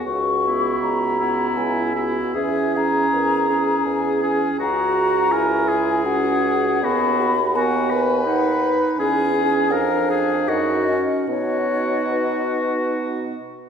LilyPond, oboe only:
\new Staff \with { instrumentName = "Oboe" } { \time 3/4 \key b \major \tempo 4 = 80 r8 e'4 e'4 e'8 | gis'8 gis'4 gis'4 gis'8 | fis'4 ais'8 gis'4. | fis'4 fis'8 b'4. |
gis'4 ais'8 gis'8 fis'8 r8 | fis'2~ fis'8 r8 | }